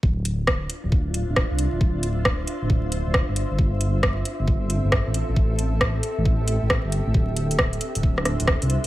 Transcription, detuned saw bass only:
X:1
M:4/4
L:1/16
Q:"Swing 16ths" 1/4=135
K:Dm
V:1 name="Detuned saw bass" clef=bass
D,,,6 z D,,,4 D,,,2 C,,2 D,,, | D,,,6 z D,,,4 D,,,2 G,,,2 G,,, | G,,,6 z G,,,4 G,,,2 A,,,2 A,,, | A,,,6 z A,,,4 A,,,2 G,,,2 A,,, |
D,,,6 z D,,,4 D,,,2 C,,2 z |]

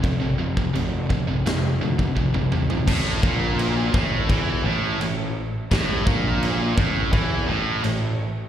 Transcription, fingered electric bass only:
X:1
M:4/4
L:1/8
Q:1/4=85
K:Am
V:1 name="Fingered electric bass" clef=bass
F,,, F,,, F,,, F,,, F,,, D,, F,,, A,,, | A,,, _B,,,2 A,,, E,, A,,, A,,, z | A,,, _B,,,2 A,,, E,, A,,, A,,, z |]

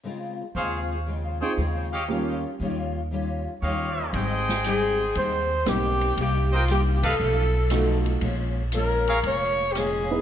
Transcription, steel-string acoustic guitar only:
X:1
M:4/4
L:1/8
Q:"Swing" 1/4=118
K:Ab
V:1 name="Steel-string acoustic guitar" clef=bass
[D,A,CF] z [D,A,CF] z [D,A,CF] z [D,A,CF] z | [E,G,DF] z [E,G,DF] z [E,G,DF] z [E,G,DF] z | [A,,G,CE] z [A,,G,CE] z [A,,G,CE] z [A,,G,CE] z | [C,G,B,E] z [C,G,B,E] z [=B,,^E,=A,^D] z [B,,E,A,D] z |
[B,,F,A,D] z [B,,F,A,D] z [B,,F,A,D] z [B,,F,A,D] z |]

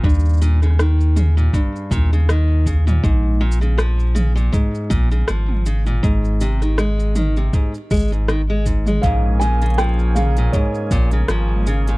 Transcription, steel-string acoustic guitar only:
X:1
M:4/4
L:1/16
Q:"Swing 16ths" 1/4=80
K:Bbdor
V:1 name="Steel-string acoustic guitar" clef=bass
G,,2 B,, D, E,2 D, B,, G,,2 B,, D, E,2 D, B,, | A,,2 B,, D, F,2 D, B,, A,,2 B,, D, F,2 D, B,, | A,,2 C, E, A,2 E, C, A,, z A, A,, E, A, A,, A, | A,,2 B,, D, F,2 D, B,, A,,2 B,, D, F,2 D, B,, |]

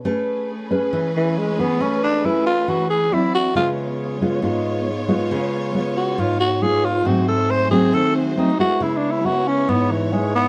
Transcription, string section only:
X:1
M:4/4
L:1/8
Q:1/4=137
K:C#phr
V:1 name="String section"
[A,CGB]8- | [A,CGB]6 [=CEFd]2 | [B,^Ec]8- | [B,^Ec]8 |
[A,FG^B]8 | [B,Ec]8 |]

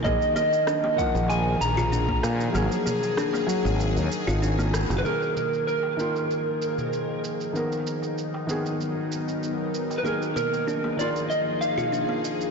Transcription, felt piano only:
X:1
M:4/4
L:1/8
Q:1/4=96
K:none
V:1 name="Felt piano"
[_E,_B,_A]3 [E,F,B,]4- [E,F,B,] | [_G,_A]3 G,4- G, | [_E,_B,_A]3 [E,B,F]4- [E,B,F] | [^D,B,^A]3 [D,B,_A]4- [D,B,A] |
[_E,_B,_A]3 [E,B,F]4- [E,B,F] |]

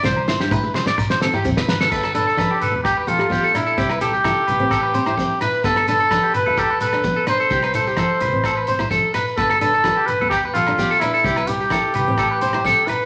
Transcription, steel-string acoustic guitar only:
X:1
M:4/4
L:1/16
Q:1/4=128
K:Gmix
V:1 name="Steel-string acoustic guitar"
C2 E2 E2 z4 C E C2 z2 | B,2 D2 D2 z B,2 z B, G B,2 D2 | C2 E2 E2 z C2 z C E C2 E2 | B,2 D2 D2 z B,2 z B, D B,2 D2 |
z2 E2 E2 z C2 z C E C2 E2 | B,2 D2 z3 B,2 z B, D B,2 D2 | z2 E2 E2 z C2 z C E C2 E2 |]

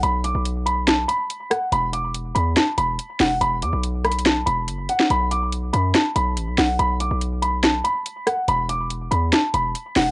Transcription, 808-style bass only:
X:1
M:4/4
L:1/16
Q:1/4=142
K:Bm
V:1 name="808-style bass" clef=bass
B,,,3 B,,,6- B,,, z6 | E,,,6 E,,2 z2 E,,,2 z2 E,,,2 | E,,,2 E,, B,,,6- B,,, E,,,2 F,,,2 z2 | B,,,6 F,,2 z2 B,,,2 A,,, B,,, B,,,2 |
B,,,3 B,,,6- B,,, z6 | E,,,6 E,,2 z2 E,,,2 z2 E,,,2 |]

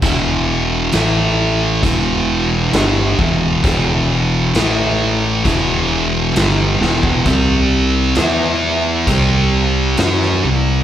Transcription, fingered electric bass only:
X:1
M:4/4
L:1/8
Q:1/4=66
K:Em
V:1 name="Fingered electric bass" clef=bass
E,,,2 A,,,2 E,,,2 G,,, E,,, | E,,,2 A,,,2 E,,,2 G,,, E,,, | C,,2 E,,2 C,,2 F,, C,, |]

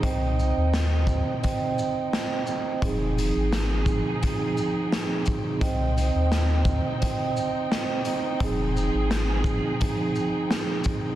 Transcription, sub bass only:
X:1
M:4/4
L:1/16
Q:"Swing 16ths" 1/4=86
K:Fm
V:1 name="Sub bass" clef=bass
C,,3 E,,4 z8 z | F,,,3 A,,,4 z8 z | C,,3 E,,4 z8 z | F,,,3 A,,,4 z8 z |]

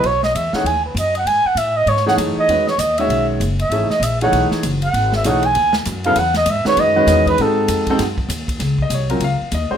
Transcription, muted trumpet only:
X:1
M:4/4
L:1/8
Q:"Swing" 1/4=196
K:E
V:1 name="Muted trumpet"
c d e f g B d f | g f e d c f z d- | d c d e2 z2 e- | e d e f2 z2 f- |
f e f g2 z2 =f | f d e c d3 B | A4 z4 | [K:Db] z8 |]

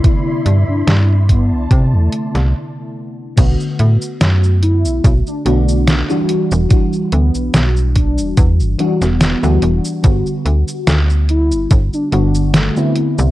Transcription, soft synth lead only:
X:1
M:4/4
L:1/16
Q:"Swing 16ths" 1/4=72
K:G
V:1 name="Soft synth lead"
z3 D2 z B,2 z A,3 z4 | z6 E2 z D D3 z3 | z2 B,2 z2 D2 z3 B,4- B, | z6 E2 z D D2 A,2 z2 |]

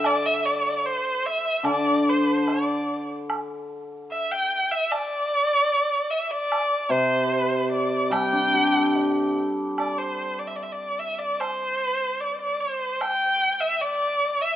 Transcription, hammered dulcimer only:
X:1
M:2/4
L:1/16
Q:1/4=74
K:none
V:1 name="Hammered dulcimer"
D,4 z4 | D,8- | D,4 z4 | z8 |
z2 C,6 | G, D G A d4- | d4 z4 | z8 |
z8 |]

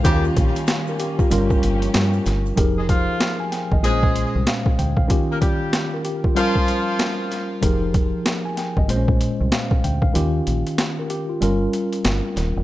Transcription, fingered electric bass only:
X:1
M:4/4
L:1/16
Q:"Swing 16ths" 1/4=95
K:Fm
V:1 name="Fingered electric bass" clef=bass
E,,2 B,,, z4 z G,,,2 G,,,2 G,,2 G,,,2 | F,,,4 z3 A,,, B,,,3 C,, z2 =D,,2 | z16 | F,,,4 z3 A,,, B,,,3 C,, z2 =D,,2 |
E,,2 B,,, z4 z G,,,2 z2 G,,, z E,,, =E,,, |]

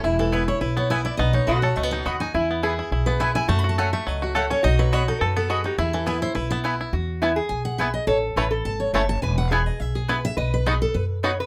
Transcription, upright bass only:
X:1
M:4/4
L:1/8
Q:"Swing" 1/4=209
K:E
V:1 name="Upright bass" clef=bass
E,,,4 B,,,4 | B,,,2 B,,,2 C,,2 D,,2 | E,,4 B,,,4 | F,,4 C,,4 |
B,,,4 F,,4 | E,,4 B,,,4 | E,,4 B,,,4 | A,,,2 A,,,2 G,,,2 F,,,2 |
E,,,4 B,,,4 | B,,,4 F,,4 |]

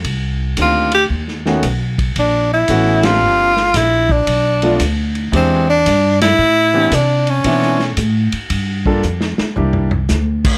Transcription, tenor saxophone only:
X:1
M:4/4
L:1/8
Q:"Swing" 1/4=114
K:Am
V:1 name="Tenor saxophone"
z2 F G z4 | D E2 F3 E D- | D2 z2 ^B, D2 E- | E2 D ^C3 z2 |
z8 |]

